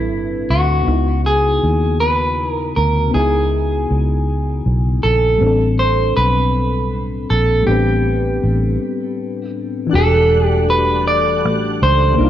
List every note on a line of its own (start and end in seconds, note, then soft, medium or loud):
0.00 0.13 A1 medium
0.00 0.80 A2 medium
0.00 0.82 G3 soft
0.00 0.83 C4 soft
0.00 0.84 D4 soft
0.00 0.53 E4 medium
0.00 0.88 A4 soft
0.00 0.89 B4 medium
0.13 0.52 G1 medium
0.50 0.83 D2 medium
0.50 1.21 F#4 medium
0.82 3.06 C#3 medium
0.82 3.08 B3 medium
0.87 1.58 C#2 loud
0.87 3.09 D#4 soft
0.87 3.11 E4 soft
0.93 3.12 F#4 medium
1.26 2.00 G#4 medium
1.63 2.72 D#2 medium
2.00 2.49 B4 medium
2.49 2.71 A#4 medium
2.76 3.10 D2 medium
2.76 3.11 A#4 medium
3.08 5.33 C#3 medium
3.08 5.34 B3 medium
3.14 3.85 C#2 medium
3.14 5.35 D#4 soft
3.14 5.37 E4 medium
3.14 4.60 G#4 medium
3.19 5.38 G#5 medium
3.91 4.61 C#2 medium
4.66 4.99 B1 medium
5.03 5.37 A#1 medium
5.03 5.74 A4 medium
5.36 7.59 A2 medium
5.36 7.61 G3 medium
5.41 6.12 A1 medium
5.41 7.62 C4 medium
5.41 7.64 D4 medium
5.47 7.65 A4 medium
5.79 6.16 C5 medium
6.17 7.25 B1 medium
6.17 7.30 B4 medium
7.30 7.63 A#1 medium
7.30 7.64 A4 medium
7.60 9.85 A2 medium
7.60 9.87 G3 medium
7.66 8.38 A1 medium
7.66 7.72 B3 soft
7.66 9.88 D4 medium
7.66 9.51 G4 medium
7.71 9.91 C4 medium
7.71 9.91 B4 medium
8.44 8.76 A1 medium
9.87 12.12 E3 medium
9.87 12.13 D4 medium
9.87 12.15 D4 medium
9.91 11.45 E1 loud
9.91 12.16 G3 medium
9.91 12.16 A3 medium
9.91 12.15 F#4 medium
9.91 12.16 G4 medium
9.91 12.16 F#5 medium
9.95 10.46 A4 medium
9.95 12.17 A4 medium
10.46 10.65 G4 medium
10.70 11.07 B4 medium
11.08 11.82 D5 loud
11.45 11.78 A1 medium
11.82 12.16 C#2 medium
11.82 12.30 C5 loud
12.13 12.30 C3 medium
12.13 12.30 A#3 medium
12.18 12.30 C2 loud
12.18 12.30 D#3 medium
12.18 12.30 A#3 medium
12.18 12.30 D4 medium
12.18 12.30 F4 medium
12.18 12.30 D5 medium
12.22 12.30 D#4 medium
12.22 12.30 F4 medium